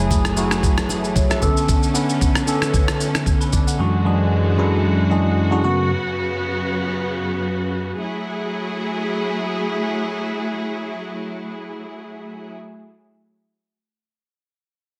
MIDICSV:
0, 0, Header, 1, 5, 480
1, 0, Start_track
1, 0, Key_signature, 3, "minor"
1, 0, Tempo, 526316
1, 1538, Time_signature, 4, 2, 24, 8
1, 13673, End_track
2, 0, Start_track
2, 0, Title_t, "Tine electric piano"
2, 0, Program_c, 0, 4
2, 0, Control_c, 0, 64, 127
2, 0, Note_on_c, 0, 54, 84
2, 0, Note_on_c, 0, 57, 76
2, 0, Note_on_c, 0, 64, 77
2, 0, Note_on_c, 0, 68, 90
2, 246, Note_off_c, 0, 54, 0
2, 249, Note_off_c, 0, 57, 0
2, 253, Note_off_c, 0, 64, 0
2, 256, Note_off_c, 0, 68, 0
2, 330, Note_on_c, 0, 54, 81
2, 336, Note_on_c, 0, 57, 74
2, 342, Note_on_c, 0, 64, 75
2, 349, Note_on_c, 0, 66, 90
2, 727, Note_off_c, 0, 54, 0
2, 730, Note_off_c, 0, 57, 0
2, 734, Note_off_c, 0, 64, 0
2, 737, Note_off_c, 0, 66, 0
2, 817, Note_on_c, 0, 69, 66
2, 1045, Note_off_c, 0, 69, 0
2, 1055, Note_on_c, 0, 73, 70
2, 1182, Note_off_c, 0, 73, 0
2, 1186, Note_on_c, 0, 76, 66
2, 1285, Note_on_c, 0, 50, 85
2, 1292, Note_on_c, 0, 59, 81
2, 1298, Note_on_c, 0, 61, 80
2, 1304, Note_on_c, 0, 69, 95
2, 1308, Control_c, 0, 64, 0
2, 1416, Note_off_c, 0, 76, 0
2, 1491, Control_c, 0, 64, 127
2, 1685, Note_off_c, 0, 50, 0
2, 1688, Note_off_c, 0, 59, 0
2, 1691, Note_off_c, 0, 61, 0
2, 1694, Note_off_c, 0, 69, 0
2, 1765, Note_on_c, 0, 50, 83
2, 1771, Note_on_c, 0, 59, 75
2, 1778, Note_on_c, 0, 61, 75
2, 1784, Note_on_c, 0, 71, 89
2, 2165, Note_off_c, 0, 50, 0
2, 2168, Note_off_c, 0, 59, 0
2, 2171, Note_off_c, 0, 61, 0
2, 2174, Note_off_c, 0, 71, 0
2, 2248, Note_on_c, 0, 50, 82
2, 2254, Note_on_c, 0, 59, 73
2, 2259, Note_on_c, 0, 61, 79
2, 2266, Note_on_c, 0, 69, 90
2, 2646, Note_off_c, 0, 50, 0
2, 2649, Note_off_c, 0, 59, 0
2, 2652, Note_off_c, 0, 61, 0
2, 2655, Note_off_c, 0, 69, 0
2, 3108, Note_on_c, 0, 71, 69
2, 3211, Note_off_c, 0, 71, 0
2, 3217, Note_on_c, 0, 74, 72
2, 3342, Note_off_c, 0, 74, 0
2, 3351, Note_on_c, 0, 78, 64
2, 3451, Note_on_c, 0, 42, 86
2, 3456, Note_on_c, 0, 52, 72
2, 3460, Note_on_c, 0, 56, 72
2, 3466, Note_on_c, 0, 62, 76
2, 3469, Control_c, 0, 64, 0
2, 3470, Note_on_c, 0, 66, 91
2, 3578, Note_off_c, 0, 78, 0
2, 3605, Control_c, 0, 64, 127
2, 3651, Note_off_c, 0, 42, 0
2, 3654, Note_off_c, 0, 52, 0
2, 3656, Note_off_c, 0, 56, 0
2, 3658, Note_off_c, 0, 62, 0
2, 3661, Note_off_c, 0, 66, 0
2, 3688, Note_on_c, 0, 42, 82
2, 3694, Note_on_c, 0, 52, 76
2, 3698, Note_on_c, 0, 56, 74
2, 3703, Note_on_c, 0, 62, 77
2, 3708, Note_on_c, 0, 68, 92
2, 4086, Note_off_c, 0, 42, 0
2, 4089, Note_off_c, 0, 52, 0
2, 4091, Note_off_c, 0, 56, 0
2, 4094, Note_off_c, 0, 62, 0
2, 4096, Note_off_c, 0, 68, 0
2, 4168, Note_on_c, 0, 42, 81
2, 4174, Note_on_c, 0, 52, 76
2, 4179, Note_on_c, 0, 56, 78
2, 4183, Note_on_c, 0, 62, 77
2, 4190, Note_on_c, 0, 64, 93
2, 4566, Note_off_c, 0, 42, 0
2, 4569, Note_off_c, 0, 52, 0
2, 4572, Note_off_c, 0, 56, 0
2, 4574, Note_off_c, 0, 62, 0
2, 4577, Note_off_c, 0, 64, 0
2, 4647, Note_on_c, 0, 42, 78
2, 4652, Note_on_c, 0, 52, 71
2, 4656, Note_on_c, 0, 56, 75
2, 4662, Note_on_c, 0, 62, 74
2, 4665, Note_on_c, 0, 68, 90
2, 4945, Note_off_c, 0, 42, 0
2, 4947, Note_off_c, 0, 52, 0
2, 4950, Note_off_c, 0, 56, 0
2, 4952, Note_off_c, 0, 62, 0
2, 4954, Note_off_c, 0, 68, 0
2, 5018, Note_on_c, 0, 42, 90
2, 5024, Note_on_c, 0, 52, 79
2, 5028, Note_on_c, 0, 56, 79
2, 5033, Note_on_c, 0, 62, 79
2, 5037, Note_on_c, 0, 66, 96
2, 5117, Note_off_c, 0, 42, 0
2, 5128, Note_on_c, 0, 42, 84
2, 5132, Note_on_c, 0, 49, 77
2, 5134, Note_off_c, 0, 52, 0
2, 5136, Note_off_c, 0, 66, 0
2, 5137, Note_off_c, 0, 56, 0
2, 5137, Note_on_c, 0, 57, 78
2, 5139, Note_off_c, 0, 62, 0
2, 5142, Note_on_c, 0, 59, 82
2, 5147, Note_on_c, 0, 66, 94
2, 5148, Control_c, 0, 64, 0
2, 5246, Control_c, 0, 64, 127
2, 5329, Note_off_c, 0, 42, 0
2, 5332, Note_off_c, 0, 49, 0
2, 5334, Note_off_c, 0, 57, 0
2, 5337, Note_off_c, 0, 59, 0
2, 5339, Note_off_c, 0, 66, 0
2, 5388, Control_c, 0, 64, 0
2, 13673, End_track
3, 0, Start_track
3, 0, Title_t, "String section"
3, 0, Program_c, 1, 48
3, 0, Note_on_c, 1, 52, 75
3, 0, Note_on_c, 1, 57, 68
3, 0, Note_on_c, 1, 68, 84
3, 1281, Note_off_c, 1, 52, 0
3, 1281, Note_off_c, 1, 68, 0
3, 1292, Note_on_c, 1, 61, 79
3, 1294, Note_on_c, 1, 50, 86
3, 3422, Note_off_c, 1, 57, 0
3, 3433, Note_off_c, 1, 61, 0
3, 3434, Note_off_c, 1, 50, 0
3, 3459, Note_on_c, 1, 56, 70
3, 3460, Note_on_c, 1, 50, 68
3, 3461, Note_on_c, 1, 42, 73
3, 3461, Note_on_c, 1, 66, 86
3, 5121, Note_off_c, 1, 56, 0
3, 5122, Note_off_c, 1, 42, 0
3, 5122, Note_off_c, 1, 50, 0
3, 5135, Note_on_c, 1, 49, 69
3, 5136, Note_on_c, 1, 42, 78
3, 5136, Note_on_c, 1, 59, 69
3, 7263, Note_off_c, 1, 66, 0
3, 7275, Note_off_c, 1, 42, 0
3, 7275, Note_off_c, 1, 49, 0
3, 7275, Note_off_c, 1, 59, 0
3, 7295, Note_on_c, 1, 54, 73
3, 7297, Note_on_c, 1, 57, 65
3, 7298, Note_on_c, 1, 68, 83
3, 7299, Note_on_c, 1, 64, 64
3, 11447, Note_off_c, 1, 54, 0
3, 11448, Note_off_c, 1, 57, 0
3, 11450, Note_off_c, 1, 64, 0
3, 11450, Note_off_c, 1, 68, 0
3, 13673, End_track
4, 0, Start_track
4, 0, Title_t, "Fingered electric bass"
4, 0, Program_c, 2, 33
4, 0, Note_on_c, 2, 30, 86
4, 1264, Note_off_c, 2, 30, 0
4, 13673, End_track
5, 0, Start_track
5, 0, Title_t, "Drums"
5, 96, Note_on_c, 9, 64, 78
5, 99, Note_on_c, 9, 36, 92
5, 100, Note_on_c, 9, 82, 71
5, 187, Note_off_c, 9, 64, 0
5, 190, Note_off_c, 9, 36, 0
5, 191, Note_off_c, 9, 82, 0
5, 227, Note_on_c, 9, 37, 86
5, 232, Note_on_c, 9, 82, 51
5, 319, Note_off_c, 9, 37, 0
5, 324, Note_off_c, 9, 82, 0
5, 336, Note_on_c, 9, 63, 53
5, 336, Note_on_c, 9, 82, 88
5, 427, Note_off_c, 9, 63, 0
5, 427, Note_off_c, 9, 82, 0
5, 467, Note_on_c, 9, 37, 89
5, 472, Note_on_c, 9, 82, 60
5, 558, Note_off_c, 9, 37, 0
5, 563, Note_off_c, 9, 82, 0
5, 576, Note_on_c, 9, 36, 118
5, 579, Note_on_c, 9, 82, 75
5, 667, Note_off_c, 9, 36, 0
5, 670, Note_off_c, 9, 82, 0
5, 708, Note_on_c, 9, 37, 107
5, 709, Note_on_c, 9, 82, 48
5, 799, Note_off_c, 9, 37, 0
5, 800, Note_off_c, 9, 82, 0
5, 814, Note_on_c, 9, 63, 73
5, 821, Note_on_c, 9, 82, 89
5, 905, Note_off_c, 9, 63, 0
5, 912, Note_off_c, 9, 82, 0
5, 952, Note_on_c, 9, 82, 51
5, 1044, Note_off_c, 9, 82, 0
5, 1055, Note_on_c, 9, 36, 94
5, 1059, Note_on_c, 9, 82, 76
5, 1062, Note_on_c, 9, 63, 74
5, 1062, Note_on_c, 9, 64, 70
5, 1146, Note_off_c, 9, 36, 0
5, 1150, Note_off_c, 9, 82, 0
5, 1153, Note_off_c, 9, 63, 0
5, 1153, Note_off_c, 9, 64, 0
5, 1191, Note_on_c, 9, 82, 47
5, 1194, Note_on_c, 9, 37, 81
5, 1282, Note_off_c, 9, 82, 0
5, 1285, Note_off_c, 9, 37, 0
5, 1295, Note_on_c, 9, 63, 63
5, 1297, Note_on_c, 9, 82, 77
5, 1298, Note_on_c, 9, 36, 82
5, 1387, Note_off_c, 9, 63, 0
5, 1388, Note_off_c, 9, 82, 0
5, 1389, Note_off_c, 9, 36, 0
5, 1432, Note_on_c, 9, 82, 56
5, 1523, Note_off_c, 9, 82, 0
5, 1538, Note_on_c, 9, 36, 107
5, 1539, Note_on_c, 9, 82, 81
5, 1629, Note_off_c, 9, 36, 0
5, 1630, Note_off_c, 9, 82, 0
5, 1670, Note_on_c, 9, 82, 58
5, 1761, Note_off_c, 9, 82, 0
5, 1777, Note_on_c, 9, 82, 92
5, 1869, Note_off_c, 9, 82, 0
5, 1910, Note_on_c, 9, 82, 49
5, 2001, Note_off_c, 9, 82, 0
5, 2019, Note_on_c, 9, 36, 88
5, 2021, Note_on_c, 9, 82, 68
5, 2110, Note_off_c, 9, 36, 0
5, 2112, Note_off_c, 9, 82, 0
5, 2147, Note_on_c, 9, 37, 80
5, 2152, Note_on_c, 9, 82, 52
5, 2238, Note_off_c, 9, 37, 0
5, 2243, Note_off_c, 9, 82, 0
5, 2257, Note_on_c, 9, 82, 82
5, 2348, Note_off_c, 9, 82, 0
5, 2389, Note_on_c, 9, 37, 85
5, 2393, Note_on_c, 9, 82, 58
5, 2480, Note_off_c, 9, 37, 0
5, 2484, Note_off_c, 9, 82, 0
5, 2496, Note_on_c, 9, 36, 116
5, 2499, Note_on_c, 9, 82, 74
5, 2587, Note_off_c, 9, 36, 0
5, 2590, Note_off_c, 9, 82, 0
5, 2628, Note_on_c, 9, 37, 107
5, 2629, Note_on_c, 9, 82, 49
5, 2719, Note_off_c, 9, 37, 0
5, 2720, Note_off_c, 9, 82, 0
5, 2741, Note_on_c, 9, 82, 88
5, 2832, Note_off_c, 9, 82, 0
5, 2872, Note_on_c, 9, 37, 88
5, 2872, Note_on_c, 9, 82, 52
5, 2963, Note_off_c, 9, 37, 0
5, 2964, Note_off_c, 9, 82, 0
5, 2976, Note_on_c, 9, 36, 97
5, 2979, Note_on_c, 9, 82, 77
5, 3067, Note_off_c, 9, 36, 0
5, 3070, Note_off_c, 9, 82, 0
5, 3112, Note_on_c, 9, 82, 45
5, 3203, Note_off_c, 9, 82, 0
5, 3217, Note_on_c, 9, 82, 78
5, 3219, Note_on_c, 9, 36, 84
5, 3308, Note_off_c, 9, 82, 0
5, 3310, Note_off_c, 9, 36, 0
5, 3353, Note_on_c, 9, 82, 56
5, 3444, Note_off_c, 9, 82, 0
5, 13673, End_track
0, 0, End_of_file